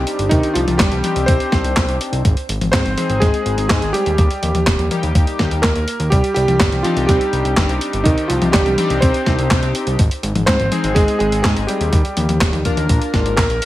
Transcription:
Already playing: G3 C4 D4 D#4 G4
0.07 closed hi-hat
0.19 G1, closed hi-hat
0.29 C2 D#3 D#4, kick, closed hi-hat
0.43 closed hi-hat
0.54 C2 F3 F4, closed hi-hat
0.67 C2, closed hi-hat, high tom
0.78 G1 G3 G4, kick, snare, clap, closed hi-hat
0.92 C2, closed hi-hat, high tom
1.04 C4 D4 D#4 G4, closed hi-hat, high tom
1.16 C2, closed hi-hat
1.26 C2 C4 C5, kick, closed hi-hat
1.40 closed hi-hat
1.52 C2, kick, snare, closed hi-hat
1.64 C2, closed hi-hat
1.76 C2 C4 D4 D#4 G4, kick, snare, clap, closed hi-hat
1.88 C2, closed hi-hat
2.01 closed hi-hat
2.12 C2, closed hi-hat
2.25 G#1, kick, closed hi-hat
2.37 closed hi-hat
2.49 G#1, closed hi-hat
2.61 G#1, closed hi-hat, high tom
2.72 G#2 C4 C5, kick, snare, clap, closed hi-hat
2.85 G#1, closed hi-hat, high tom
2.97 G#3 C4 D#4 G#4, closed hi-hat, high tom
3.09 G#1, closed hi-hat
3.20 G#1 G#3 G#4, kick, snare, closed hi-hat
3.34 closed hi-hat
3.46 G#1, closed hi-hat
3.58 G#1, closed hi-hat
3.69 G#2 G#3 C4 D#4 G#4, kick, snare, clap, closed hi-hat
3.82 G#1, closed hi-hat
3.93 G3 G4, closed hi-hat
4.06 D#2, closed hi-hat
4.18 D#2, kick, closed hi-hat
4.31 closed hi-hat
4.43 D#2, closed hi-hat, high tom
4.55 D#2, closed hi-hat, high tom
4.67 D#1, kick, snare, clap, closed hi-hat
4.79 D#2, closed hi-hat, high tom
4.91 G3 A#3 D#4 G4, closed hi-hat, high tom
5.03 D#2, closed hi-hat
5.15 D#2, kick, closed hi-hat
5.27 closed hi-hat
5.39 D#2, kick, snare, closed hi-hat
5.51 D#2, closed hi-hat
5.62 D#2 A#3 A#4, kick, snare, clap, closed hi-hat
5.76 D#2, closed hi-hat
5.88 closed hi-hat
6.00 D#2, closed hi-hat
6.10 C2 G3 G4, kick, closed hi-hat
6.24 closed hi-hat
6.34 C2 G3 G4, closed hi-hat
6.48 C2, closed hi-hat, high tom
6.60 G1, kick, snare, clap, closed hi-hat
6.72 C2, closed hi-hat, high tom
6.83 F3 C4 D4 D#4 F4 G4, closed hi-hat, high tom
6.96 C2, closed hi-hat
7.07 C2 G3 G4, kick, snare, closed hi-hat
7.21 closed hi-hat
7.33 C2, closed hi-hat
7.45 C2, closed hi-hat
7.57 G1 C4 D4 D#4 G4, kick, snare, clap, closed hi-hat
7.69 C2, closed hi-hat
7.81 closed hi-hat
7.93 G1, closed hi-hat
8.04 C2 D#3 D#4, kick, closed hi-hat
8.18 closed hi-hat
8.28 C2 F3 F4, closed hi-hat
8.42 C2, closed hi-hat, high tom
8.52 G1 G3 G4, kick, snare, clap, closed hi-hat
8.66 C2, closed hi-hat, high tom
8.78 C4 D4 D#4 G4, closed hi-hat, high tom
8.90 C2, closed hi-hat
9.01 C2 C4 C5, kick, closed hi-hat
9.14 closed hi-hat
9.26 C2, kick, snare, closed hi-hat
9.39 C2, closed hi-hat
9.51 C2 C4 D4 D#4 G4, kick, snare, clap, closed hi-hat
9.63 C2, closed hi-hat
9.75 closed hi-hat
9.87 C2, closed hi-hat
9.99 G#1, kick, closed hi-hat
10.11 closed hi-hat
10.23 G#1, closed hi-hat
10.35 G#1, closed hi-hat, high tom
10.46 G#2 C4 C5, kick, snare, clap, closed hi-hat
10.60 G#1, closed hi-hat, high tom
10.72 G#3 C4 D#4 G#4, closed hi-hat, high tom
10.84 G#1, closed hi-hat
10.95 G#1 G#3 G#4, kick, snare, closed hi-hat
11.08 closed hi-hat
11.19 G#1 G#3 G#4, closed hi-hat
11.32 G#1, closed hi-hat
11.43 G#2 G#3 C4 D#4 G#4, kick, snare, clap, closed hi-hat
11.56 G#1, closed hi-hat
11.67 G3 G4, closed hi-hat
11.80 D#2, closed hi-hat
11.93 D#2, kick, closed hi-hat
12.05 closed hi-hat
12.17 D#2, closed hi-hat, high tom
12.29 D#2, closed hi-hat, high tom
12.41 D#1, kick, snare, clap, closed hi-hat
12.53 D#2, closed hi-hat, high tom
12.65 A#3 D4 F4 A#4, kick, closed hi-hat, high tom
12.77 D#2, closed hi-hat
12.89 A#1, kick, closed hi-hat
13.02 closed hi-hat
13.14 G#1, kick, snare, closed hi-hat
13.26 G#1, closed hi-hat
13.37 A#1 A#4, kick, snare, clap, closed hi-hat
13.50 A#1, closed hi-hat
13.62 closed hi-hat

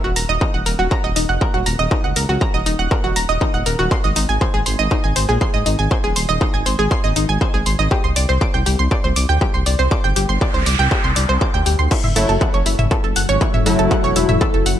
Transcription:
0.04 D#1 F#4
0.16 D#1 A#5, open hi-hat
0.29 D#1 D#5
0.41 D#4, kick
0.54 D#1 F#5
0.66 D#1 A#4, open hi-hat
0.79 D#1 F#4
0.91 A#5, kick
1.04 D#1 D#5
1.16 D#1 D#4, open hi-hat
1.29 F1 F#5
1.41 A#4, kick
1.54 D#1 F#4
1.66 D#1 A#5, open hi-hat
1.79 D#1 D#5
1.91 D#4, kick
2.04 C#2 F#5
2.16 C#2 A#4, open hi-hat
2.29 C#2 F#4
2.41 A#5, kick
2.54 D#1 D#5
2.66 D#1 D#4, open hi-hat
2.79 D#1 F#5
2.91 A#4, kick
3.04 D#1 F#4
3.16 D#1 A#5, open hi-hat
3.29 D#1 D#5
3.41 D#4, kick
3.54 D#1 F#5
3.66 D#1 A#4, open hi-hat
3.79 D#1 F#4
3.91 C6, kick
4.04 G#1 D#5
4.16 G#1 D#4, open hi-hat
4.29 G#1 G#5
4.41 C5, kick
4.54 G#1 G#4
4.66 G#1 C6, open hi-hat
4.79 G#1 D#5
4.91 D#4, kick
5.04 G#1 G#5
5.16 G#1 C5, open hi-hat
5.29 A#1 G#4
5.41 C6, kick
5.54 G#1 D#5
5.66 G#1 D#4, open hi-hat
5.79 G#1 G#5
5.91 C5, kick
6.04 D#1 G#4
6.16 D#1 C6, open hi-hat
6.29 D#1 D#5
6.41 D#4, kick
6.54 G#1 G#5
6.66 G#1 C5, open hi-hat
6.79 G#1 G#4
6.91 C6, kick
7.04 G#1 D#5
7.16 G#1 D#4, open hi-hat
7.29 G#1 G#5
7.41 C5, kick
7.54 G#1 G#4
7.66 G#1 C6, open hi-hat
7.79 G#1 D#5
7.91 G4, kick
8.04 C2 C6
8.16 C2 D5, open hi-hat
8.29 C2 C5
8.41 D6, kick
8.54 C2 G5
8.66 C2 G4, open hi-hat
8.79 C2 C6
8.91 D5, kick
9.04 C2 C5
9.16 C2 D6, open hi-hat
9.29 D2 G5
9.41 G4, kick
9.54 C2 C6
9.66 C2 D5, open hi-hat
9.79 C2 C5
9.91 D6, kick, noise sweep
10.04 G1 G5
10.16 G1 G4, open hi-hat
10.29 G1 C6
10.41 D5, kick
10.54 C2 C5
10.66 C2 D6, open hi-hat
10.79 C2 G5
10.91 G4, kick
11.04 C2 C6
11.16 C2 D5, open hi-hat
11.29 C2 C5
11.41 D6, kick
11.54 D2 G5
11.66 D2 G4, open hi-hat
11.79 D2 C6
11.91 F#3 E4 A4, kick, closed hi-hat, crash
12.04 F#1 E5, closed hi-hat, mid tom
12.16 F#1 F#3 A3 E4 A4, open hi-hat
12.29 F#1 A4, closed hi-hat
12.41 F#5, kick, closed hi-hat
12.54 F#1 C#5, closed hi-hat
12.66 F#1 E4, open hi-hat
12.79 F#1 E5, closed hi-hat, mid tom
12.91 A4, kick, closed hi-hat
13.04 F#1 A4, closed hi-hat
13.16 F#1 F#5, open hi-hat
13.29 G#1 C#5, closed hi-hat
13.41 E4, kick, closed hi-hat
13.54 F#1 E5, closed hi-hat, mid tom
13.66 F#1 F#3 A3 E4 A4, open hi-hat
13.79 F#1 A4, closed hi-hat
13.91 F#5, kick, closed hi-hat
14.04 E1 C#5, closed hi-hat
14.16 E1 F#3 A3 E4, open hi-hat
14.29 E1 E5, closed hi-hat, mid tom
14.41 A4, kick, closed hi-hat
14.54 F#1 A4, closed hi-hat
14.66 F#1 F#5, open hi-hat

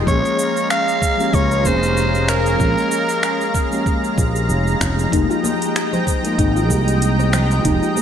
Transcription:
Already playing: G#3
0.04 A#1 F3 G#3 A#3 C#4 F5 A#5, kick
0.08 C#4 G#4 C#5, shaker
0.25 shaker
0.39 shaker
0.57 shaker
0.70 F5, finger snap, shaker
0.88 shaker
1.02 kick, shaker
1.17 F3 G#3 A#3 C#4 G4, shaker
1.33 C#2 C#5, kick, shaker
1.51 shaker
1.61 F1 F3 G#3 A#3, kick
1.65 C#4 G#4 C5, shaker
1.83 shaker
1.97 shaker
2.15 shaker
2.29 A#4, finger snap, shaker
2.46 shaker
2.56 A#1 F3 G#3 A#3, kick
2.60 C#4 G#4, shaker
2.78 shaker
2.92 shaker
3.09 shaker
3.23 finger snap, shaker
3.41 shaker
3.55 kick, shaker
3.70 F3 G#3 A#3 C#4 G4, shaker
3.86 kick, shaker
4.04 shaker
4.18 A#1, kick, shaker
4.36 shaker
4.49 F1, shaker
4.67 shaker
4.81 F1, finger snap, kick, shaker
4.99 shaker
5.09 F1 F3 G#3 A#3 D#4 D#5 G5, kick
5.13 D#4 G4, closed hi-hat, shaker
5.30 F4, shaker
5.44 G#4, high bongo, high conga, shaker
5.62 closed hi-hat, shaker
5.76 finger snap, closed hi-hat, shaker
5.93 C5, low conga, shaker
6.07 C5, kick, shaker
6.23 F3 G#3 A#3 D#4 F4, closed hi-hat, high conga, shaker
6.38 G#1 D#4, kick, closed hi-hat, shaker
6.56 F4, shaker
6.66 C2 F3 G#3 A#3 G#4, kick, high bongo
6.71 D#4 G4, shaker
6.88 closed hi-hat, shaker
7.02 closed hi-hat, shaker
7.19 C5, high conga, shaker
7.33 C5, finger snap, low conga, shaker
7.51 high bongo, shaker
7.61 F3 G#3, kick
7.65 F1 A#3 D#4 G4, closed hi-hat, shaker
7.83 F4, shaker
7.96 G#4, high bongo, high conga, shaker

